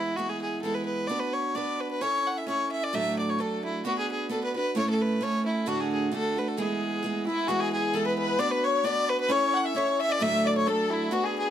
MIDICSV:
0, 0, Header, 1, 4, 480
1, 0, Start_track
1, 0, Tempo, 455581
1, 193, Time_signature, 2, 2, 24, 8
1, 12117, End_track
2, 0, Start_track
2, 0, Title_t, "Erhu"
2, 0, Program_c, 0, 110
2, 7665, Note_on_c, 0, 64, 64
2, 7861, Note_on_c, 0, 68, 60
2, 7877, Note_off_c, 0, 64, 0
2, 7883, Note_on_c, 0, 66, 75
2, 7898, Note_off_c, 0, 68, 0
2, 8002, Note_on_c, 0, 68, 68
2, 8018, Note_off_c, 0, 66, 0
2, 8136, Note_off_c, 0, 68, 0
2, 8147, Note_on_c, 0, 68, 70
2, 8369, Note_on_c, 0, 69, 81
2, 8385, Note_off_c, 0, 68, 0
2, 8491, Note_on_c, 0, 71, 67
2, 8507, Note_off_c, 0, 69, 0
2, 8610, Note_off_c, 0, 71, 0
2, 8616, Note_on_c, 0, 71, 84
2, 8844, Note_on_c, 0, 74, 96
2, 8860, Note_off_c, 0, 71, 0
2, 8971, Note_off_c, 0, 74, 0
2, 8977, Note_on_c, 0, 71, 80
2, 9118, Note_on_c, 0, 73, 94
2, 9134, Note_off_c, 0, 71, 0
2, 9331, Note_on_c, 0, 74, 83
2, 9346, Note_off_c, 0, 73, 0
2, 9576, Note_on_c, 0, 71, 67
2, 9592, Note_off_c, 0, 74, 0
2, 9685, Note_off_c, 0, 71, 0
2, 9694, Note_on_c, 0, 71, 76
2, 9798, Note_on_c, 0, 73, 90
2, 9813, Note_off_c, 0, 71, 0
2, 10047, Note_on_c, 0, 78, 85
2, 10063, Note_off_c, 0, 73, 0
2, 10162, Note_on_c, 0, 76, 77
2, 10178, Note_off_c, 0, 78, 0
2, 10285, Note_on_c, 0, 73, 97
2, 10301, Note_off_c, 0, 76, 0
2, 10534, Note_on_c, 0, 76, 69
2, 10550, Note_off_c, 0, 73, 0
2, 10637, Note_on_c, 0, 74, 77
2, 10653, Note_off_c, 0, 76, 0
2, 10742, Note_off_c, 0, 74, 0
2, 10749, Note_on_c, 0, 76, 83
2, 11011, Note_on_c, 0, 74, 79
2, 11027, Note_off_c, 0, 76, 0
2, 11128, Note_on_c, 0, 73, 67
2, 11144, Note_off_c, 0, 74, 0
2, 11235, Note_on_c, 0, 69, 79
2, 11251, Note_off_c, 0, 73, 0
2, 11486, Note_on_c, 0, 64, 75
2, 11502, Note_off_c, 0, 69, 0
2, 11703, Note_off_c, 0, 64, 0
2, 11710, Note_on_c, 0, 66, 84
2, 11838, Note_on_c, 0, 68, 69
2, 11853, Note_off_c, 0, 66, 0
2, 11970, Note_off_c, 0, 68, 0
2, 11975, Note_on_c, 0, 68, 77
2, 12117, Note_off_c, 0, 68, 0
2, 12117, End_track
3, 0, Start_track
3, 0, Title_t, "Fiddle"
3, 0, Program_c, 1, 110
3, 0, Note_on_c, 1, 64, 74
3, 174, Note_on_c, 1, 66, 72
3, 190, Note_off_c, 1, 64, 0
3, 306, Note_on_c, 1, 68, 66
3, 321, Note_off_c, 1, 66, 0
3, 430, Note_off_c, 1, 68, 0
3, 436, Note_on_c, 1, 68, 58
3, 643, Note_off_c, 1, 68, 0
3, 650, Note_on_c, 1, 69, 70
3, 780, Note_on_c, 1, 71, 72
3, 796, Note_off_c, 1, 69, 0
3, 892, Note_off_c, 1, 71, 0
3, 898, Note_on_c, 1, 71, 78
3, 1129, Note_on_c, 1, 74, 75
3, 1144, Note_off_c, 1, 71, 0
3, 1260, Note_on_c, 1, 71, 78
3, 1276, Note_off_c, 1, 74, 0
3, 1399, Note_on_c, 1, 73, 71
3, 1415, Note_off_c, 1, 71, 0
3, 1631, Note_on_c, 1, 74, 78
3, 1647, Note_off_c, 1, 73, 0
3, 1901, Note_on_c, 1, 71, 69
3, 1916, Note_off_c, 1, 74, 0
3, 2006, Note_off_c, 1, 71, 0
3, 2013, Note_on_c, 1, 71, 76
3, 2123, Note_on_c, 1, 73, 93
3, 2139, Note_off_c, 1, 71, 0
3, 2387, Note_on_c, 1, 78, 82
3, 2403, Note_off_c, 1, 73, 0
3, 2505, Note_on_c, 1, 76, 73
3, 2520, Note_off_c, 1, 78, 0
3, 2607, Note_off_c, 1, 76, 0
3, 2613, Note_on_c, 1, 73, 82
3, 2852, Note_off_c, 1, 73, 0
3, 2862, Note_on_c, 1, 76, 85
3, 2986, Note_on_c, 1, 74, 85
3, 3002, Note_off_c, 1, 76, 0
3, 3103, Note_on_c, 1, 76, 100
3, 3119, Note_off_c, 1, 74, 0
3, 3354, Note_off_c, 1, 76, 0
3, 3360, Note_on_c, 1, 74, 71
3, 3476, Note_on_c, 1, 73, 71
3, 3491, Note_off_c, 1, 74, 0
3, 3578, Note_on_c, 1, 69, 74
3, 3594, Note_off_c, 1, 73, 0
3, 3834, Note_off_c, 1, 69, 0
3, 3844, Note_on_c, 1, 64, 70
3, 4043, Note_off_c, 1, 64, 0
3, 4065, Note_on_c, 1, 66, 86
3, 4179, Note_off_c, 1, 66, 0
3, 4195, Note_on_c, 1, 68, 83
3, 4309, Note_off_c, 1, 68, 0
3, 4334, Note_on_c, 1, 68, 74
3, 4529, Note_off_c, 1, 68, 0
3, 4541, Note_on_c, 1, 69, 70
3, 4658, Note_off_c, 1, 69, 0
3, 4677, Note_on_c, 1, 71, 73
3, 4791, Note_off_c, 1, 71, 0
3, 4806, Note_on_c, 1, 71, 83
3, 5005, Note_off_c, 1, 71, 0
3, 5033, Note_on_c, 1, 73, 86
3, 5144, Note_off_c, 1, 73, 0
3, 5162, Note_on_c, 1, 69, 82
3, 5282, Note_on_c, 1, 71, 75
3, 5298, Note_off_c, 1, 69, 0
3, 5507, Note_on_c, 1, 73, 89
3, 5523, Note_off_c, 1, 71, 0
3, 5742, Note_off_c, 1, 73, 0
3, 5749, Note_on_c, 1, 64, 66
3, 5979, Note_on_c, 1, 66, 78
3, 5995, Note_off_c, 1, 64, 0
3, 6111, Note_on_c, 1, 68, 68
3, 6127, Note_off_c, 1, 66, 0
3, 6236, Note_off_c, 1, 68, 0
3, 6244, Note_on_c, 1, 68, 60
3, 6442, Note_off_c, 1, 68, 0
3, 6460, Note_on_c, 1, 69, 83
3, 6726, Note_on_c, 1, 71, 72
3, 6742, Note_off_c, 1, 69, 0
3, 6825, Note_on_c, 1, 69, 76
3, 6841, Note_off_c, 1, 71, 0
3, 6932, Note_off_c, 1, 69, 0
3, 6938, Note_on_c, 1, 68, 68
3, 7627, Note_off_c, 1, 68, 0
3, 7657, Note_on_c, 1, 64, 77
3, 7880, Note_on_c, 1, 66, 85
3, 7896, Note_off_c, 1, 64, 0
3, 8006, Note_on_c, 1, 68, 96
3, 8022, Note_off_c, 1, 66, 0
3, 8134, Note_off_c, 1, 68, 0
3, 8141, Note_on_c, 1, 68, 76
3, 8369, Note_on_c, 1, 69, 87
3, 8385, Note_off_c, 1, 68, 0
3, 8490, Note_off_c, 1, 69, 0
3, 8497, Note_on_c, 1, 71, 71
3, 8614, Note_off_c, 1, 71, 0
3, 8624, Note_on_c, 1, 71, 85
3, 8843, Note_on_c, 1, 74, 90
3, 8858, Note_off_c, 1, 71, 0
3, 8965, Note_on_c, 1, 71, 86
3, 8980, Note_off_c, 1, 74, 0
3, 9103, Note_on_c, 1, 73, 78
3, 9119, Note_off_c, 1, 71, 0
3, 9316, Note_on_c, 1, 74, 91
3, 9332, Note_off_c, 1, 73, 0
3, 9578, Note_on_c, 1, 71, 87
3, 9594, Note_off_c, 1, 74, 0
3, 9686, Note_off_c, 1, 71, 0
3, 9695, Note_on_c, 1, 71, 95
3, 9810, Note_on_c, 1, 73, 99
3, 9826, Note_off_c, 1, 71, 0
3, 10072, Note_on_c, 1, 78, 83
3, 10088, Note_off_c, 1, 73, 0
3, 10180, Note_on_c, 1, 76, 84
3, 10196, Note_off_c, 1, 78, 0
3, 10286, Note_on_c, 1, 73, 89
3, 10302, Note_off_c, 1, 76, 0
3, 10538, Note_off_c, 1, 73, 0
3, 10556, Note_on_c, 1, 76, 93
3, 10659, Note_on_c, 1, 74, 94
3, 10675, Note_off_c, 1, 76, 0
3, 10773, Note_on_c, 1, 76, 105
3, 10789, Note_off_c, 1, 74, 0
3, 11030, Note_on_c, 1, 74, 81
3, 11046, Note_off_c, 1, 76, 0
3, 11131, Note_off_c, 1, 74, 0
3, 11144, Note_on_c, 1, 73, 81
3, 11252, Note_on_c, 1, 69, 79
3, 11268, Note_off_c, 1, 73, 0
3, 11514, Note_on_c, 1, 64, 78
3, 11530, Note_off_c, 1, 69, 0
3, 11727, Note_on_c, 1, 66, 87
3, 11742, Note_off_c, 1, 64, 0
3, 11858, Note_on_c, 1, 68, 77
3, 11873, Note_off_c, 1, 66, 0
3, 11980, Note_off_c, 1, 68, 0
3, 11999, Note_on_c, 1, 68, 66
3, 12117, Note_off_c, 1, 68, 0
3, 12117, End_track
4, 0, Start_track
4, 0, Title_t, "Steel-string acoustic guitar"
4, 0, Program_c, 2, 25
4, 0, Note_on_c, 2, 52, 55
4, 0, Note_on_c, 2, 56, 53
4, 0, Note_on_c, 2, 59, 61
4, 0, Note_on_c, 2, 64, 67
4, 170, Note_off_c, 2, 52, 0
4, 180, Note_off_c, 2, 56, 0
4, 183, Note_on_c, 2, 52, 58
4, 188, Note_off_c, 2, 59, 0
4, 193, Note_off_c, 2, 64, 0
4, 193, Note_on_c, 2, 56, 60
4, 201, Note_on_c, 2, 59, 66
4, 206, Note_on_c, 2, 64, 71
4, 651, Note_off_c, 2, 52, 0
4, 663, Note_off_c, 2, 56, 0
4, 664, Note_on_c, 2, 52, 51
4, 673, Note_off_c, 2, 59, 0
4, 676, Note_on_c, 2, 56, 56
4, 682, Note_off_c, 2, 64, 0
4, 685, Note_on_c, 2, 59, 59
4, 695, Note_on_c, 2, 64, 60
4, 1140, Note_off_c, 2, 59, 0
4, 1149, Note_off_c, 2, 52, 0
4, 1153, Note_on_c, 2, 59, 67
4, 1156, Note_off_c, 2, 56, 0
4, 1160, Note_on_c, 2, 62, 60
4, 1168, Note_off_c, 2, 64, 0
4, 1169, Note_on_c, 2, 66, 64
4, 1175, Note_on_c, 2, 71, 62
4, 1619, Note_off_c, 2, 59, 0
4, 1631, Note_off_c, 2, 62, 0
4, 1632, Note_on_c, 2, 59, 54
4, 1641, Note_off_c, 2, 66, 0
4, 1643, Note_on_c, 2, 62, 58
4, 1649, Note_off_c, 2, 71, 0
4, 1654, Note_on_c, 2, 66, 48
4, 1660, Note_on_c, 2, 71, 66
4, 2116, Note_off_c, 2, 59, 0
4, 2120, Note_on_c, 2, 61, 64
4, 2125, Note_off_c, 2, 62, 0
4, 2130, Note_off_c, 2, 66, 0
4, 2132, Note_on_c, 2, 64, 61
4, 2133, Note_off_c, 2, 71, 0
4, 2139, Note_on_c, 2, 69, 65
4, 2146, Note_on_c, 2, 73, 69
4, 2586, Note_off_c, 2, 61, 0
4, 2599, Note_on_c, 2, 61, 54
4, 2601, Note_off_c, 2, 64, 0
4, 2611, Note_off_c, 2, 69, 0
4, 2613, Note_on_c, 2, 64, 62
4, 2617, Note_off_c, 2, 73, 0
4, 2623, Note_on_c, 2, 69, 60
4, 2632, Note_on_c, 2, 73, 67
4, 3085, Note_off_c, 2, 61, 0
4, 3085, Note_on_c, 2, 38, 70
4, 3089, Note_on_c, 2, 45, 63
4, 3092, Note_off_c, 2, 64, 0
4, 3093, Note_off_c, 2, 69, 0
4, 3094, Note_on_c, 2, 54, 70
4, 3098, Note_on_c, 2, 62, 65
4, 3101, Note_off_c, 2, 73, 0
4, 3104, Note_on_c, 2, 57, 70
4, 3106, Note_on_c, 2, 69, 62
4, 3555, Note_off_c, 2, 54, 0
4, 3567, Note_on_c, 2, 54, 54
4, 3568, Note_off_c, 2, 38, 0
4, 3570, Note_off_c, 2, 45, 0
4, 3570, Note_off_c, 2, 62, 0
4, 3578, Note_off_c, 2, 57, 0
4, 3579, Note_off_c, 2, 69, 0
4, 3583, Note_on_c, 2, 62, 53
4, 3590, Note_on_c, 2, 57, 54
4, 3598, Note_on_c, 2, 69, 56
4, 4048, Note_off_c, 2, 62, 0
4, 4049, Note_off_c, 2, 54, 0
4, 4054, Note_on_c, 2, 59, 61
4, 4061, Note_off_c, 2, 57, 0
4, 4061, Note_on_c, 2, 62, 68
4, 4066, Note_off_c, 2, 69, 0
4, 4069, Note_on_c, 2, 66, 60
4, 4075, Note_on_c, 2, 71, 71
4, 4512, Note_off_c, 2, 59, 0
4, 4522, Note_off_c, 2, 62, 0
4, 4525, Note_on_c, 2, 59, 59
4, 4533, Note_off_c, 2, 66, 0
4, 4535, Note_on_c, 2, 62, 62
4, 4544, Note_off_c, 2, 71, 0
4, 4546, Note_on_c, 2, 66, 62
4, 4558, Note_on_c, 2, 71, 62
4, 4774, Note_off_c, 2, 71, 0
4, 4787, Note_on_c, 2, 71, 35
4, 4788, Note_off_c, 2, 59, 0
4, 4793, Note_off_c, 2, 62, 0
4, 4793, Note_off_c, 2, 66, 0
4, 4806, Note_on_c, 2, 66, 34
4, 4819, Note_on_c, 2, 62, 30
4, 5003, Note_on_c, 2, 45, 73
4, 5010, Note_off_c, 2, 71, 0
4, 5012, Note_on_c, 2, 57, 62
4, 5013, Note_off_c, 2, 62, 0
4, 5018, Note_on_c, 2, 61, 56
4, 5020, Note_off_c, 2, 66, 0
4, 5024, Note_on_c, 2, 64, 73
4, 5029, Note_on_c, 2, 69, 70
4, 5473, Note_off_c, 2, 57, 0
4, 5486, Note_on_c, 2, 57, 59
4, 5488, Note_off_c, 2, 45, 0
4, 5488, Note_off_c, 2, 61, 0
4, 5498, Note_off_c, 2, 64, 0
4, 5501, Note_off_c, 2, 69, 0
4, 5501, Note_on_c, 2, 61, 62
4, 5510, Note_on_c, 2, 64, 65
4, 5519, Note_on_c, 2, 69, 59
4, 5963, Note_on_c, 2, 38, 72
4, 5968, Note_off_c, 2, 57, 0
4, 5970, Note_on_c, 2, 45, 69
4, 5972, Note_on_c, 2, 50, 74
4, 5975, Note_off_c, 2, 61, 0
4, 5977, Note_off_c, 2, 64, 0
4, 5979, Note_on_c, 2, 62, 86
4, 5981, Note_on_c, 2, 57, 78
4, 5985, Note_off_c, 2, 69, 0
4, 5990, Note_on_c, 2, 66, 82
4, 6430, Note_off_c, 2, 50, 0
4, 6441, Note_off_c, 2, 62, 0
4, 6443, Note_on_c, 2, 50, 70
4, 6446, Note_off_c, 2, 38, 0
4, 6450, Note_off_c, 2, 45, 0
4, 6450, Note_off_c, 2, 57, 0
4, 6454, Note_on_c, 2, 62, 61
4, 6460, Note_off_c, 2, 66, 0
4, 6463, Note_on_c, 2, 57, 64
4, 6474, Note_on_c, 2, 66, 70
4, 6687, Note_off_c, 2, 66, 0
4, 6700, Note_off_c, 2, 57, 0
4, 6700, Note_on_c, 2, 66, 39
4, 6705, Note_off_c, 2, 50, 0
4, 6710, Note_off_c, 2, 62, 0
4, 6712, Note_on_c, 2, 57, 36
4, 6722, Note_on_c, 2, 62, 35
4, 6733, Note_on_c, 2, 50, 34
4, 6922, Note_off_c, 2, 50, 0
4, 6924, Note_off_c, 2, 66, 0
4, 6926, Note_on_c, 2, 52, 62
4, 6930, Note_off_c, 2, 62, 0
4, 6931, Note_off_c, 2, 57, 0
4, 6934, Note_on_c, 2, 56, 75
4, 6937, Note_on_c, 2, 59, 84
4, 6949, Note_on_c, 2, 64, 64
4, 7390, Note_off_c, 2, 52, 0
4, 7403, Note_on_c, 2, 52, 59
4, 7405, Note_off_c, 2, 56, 0
4, 7417, Note_off_c, 2, 64, 0
4, 7417, Note_on_c, 2, 56, 68
4, 7421, Note_off_c, 2, 59, 0
4, 7425, Note_on_c, 2, 59, 53
4, 7436, Note_on_c, 2, 64, 65
4, 7644, Note_off_c, 2, 64, 0
4, 7657, Note_on_c, 2, 64, 44
4, 7663, Note_off_c, 2, 52, 0
4, 7663, Note_off_c, 2, 59, 0
4, 7670, Note_off_c, 2, 56, 0
4, 7675, Note_on_c, 2, 59, 33
4, 7690, Note_on_c, 2, 56, 38
4, 7879, Note_off_c, 2, 56, 0
4, 7880, Note_off_c, 2, 64, 0
4, 7881, Note_on_c, 2, 52, 62
4, 7890, Note_off_c, 2, 59, 0
4, 7891, Note_on_c, 2, 56, 78
4, 7900, Note_on_c, 2, 59, 78
4, 7905, Note_on_c, 2, 64, 72
4, 8348, Note_off_c, 2, 52, 0
4, 8361, Note_off_c, 2, 56, 0
4, 8361, Note_on_c, 2, 52, 65
4, 8370, Note_off_c, 2, 59, 0
4, 8372, Note_off_c, 2, 64, 0
4, 8374, Note_on_c, 2, 56, 69
4, 8383, Note_on_c, 2, 59, 75
4, 8395, Note_on_c, 2, 64, 67
4, 8822, Note_off_c, 2, 59, 0
4, 8830, Note_off_c, 2, 52, 0
4, 8835, Note_on_c, 2, 59, 71
4, 8841, Note_off_c, 2, 56, 0
4, 8845, Note_on_c, 2, 62, 68
4, 8851, Note_off_c, 2, 64, 0
4, 8852, Note_on_c, 2, 66, 81
4, 8855, Note_on_c, 2, 71, 75
4, 9298, Note_off_c, 2, 59, 0
4, 9308, Note_off_c, 2, 62, 0
4, 9311, Note_on_c, 2, 59, 65
4, 9317, Note_off_c, 2, 66, 0
4, 9321, Note_on_c, 2, 62, 67
4, 9325, Note_off_c, 2, 71, 0
4, 9330, Note_on_c, 2, 66, 62
4, 9343, Note_on_c, 2, 71, 68
4, 9780, Note_off_c, 2, 59, 0
4, 9784, Note_on_c, 2, 61, 72
4, 9790, Note_off_c, 2, 62, 0
4, 9794, Note_on_c, 2, 64, 83
4, 9800, Note_off_c, 2, 66, 0
4, 9803, Note_off_c, 2, 71, 0
4, 9804, Note_on_c, 2, 69, 76
4, 9807, Note_on_c, 2, 73, 83
4, 10256, Note_off_c, 2, 61, 0
4, 10266, Note_off_c, 2, 64, 0
4, 10268, Note_on_c, 2, 61, 56
4, 10278, Note_off_c, 2, 69, 0
4, 10279, Note_off_c, 2, 73, 0
4, 10279, Note_on_c, 2, 64, 57
4, 10291, Note_on_c, 2, 69, 59
4, 10301, Note_on_c, 2, 73, 74
4, 10743, Note_on_c, 2, 38, 65
4, 10750, Note_off_c, 2, 61, 0
4, 10751, Note_on_c, 2, 45, 68
4, 10755, Note_off_c, 2, 64, 0
4, 10755, Note_off_c, 2, 69, 0
4, 10755, Note_on_c, 2, 54, 66
4, 10763, Note_off_c, 2, 73, 0
4, 10763, Note_on_c, 2, 62, 70
4, 10765, Note_on_c, 2, 57, 82
4, 10767, Note_on_c, 2, 69, 75
4, 11215, Note_off_c, 2, 54, 0
4, 11225, Note_off_c, 2, 62, 0
4, 11227, Note_off_c, 2, 38, 0
4, 11228, Note_on_c, 2, 54, 59
4, 11231, Note_off_c, 2, 45, 0
4, 11234, Note_off_c, 2, 57, 0
4, 11238, Note_on_c, 2, 62, 56
4, 11239, Note_off_c, 2, 69, 0
4, 11247, Note_on_c, 2, 57, 67
4, 11257, Note_on_c, 2, 69, 69
4, 11702, Note_off_c, 2, 54, 0
4, 11703, Note_off_c, 2, 62, 0
4, 11706, Note_on_c, 2, 59, 73
4, 11715, Note_off_c, 2, 57, 0
4, 11716, Note_on_c, 2, 62, 81
4, 11719, Note_on_c, 2, 66, 69
4, 11723, Note_off_c, 2, 69, 0
4, 11727, Note_on_c, 2, 71, 74
4, 12117, Note_off_c, 2, 59, 0
4, 12117, Note_off_c, 2, 62, 0
4, 12117, Note_off_c, 2, 66, 0
4, 12117, Note_off_c, 2, 71, 0
4, 12117, End_track
0, 0, End_of_file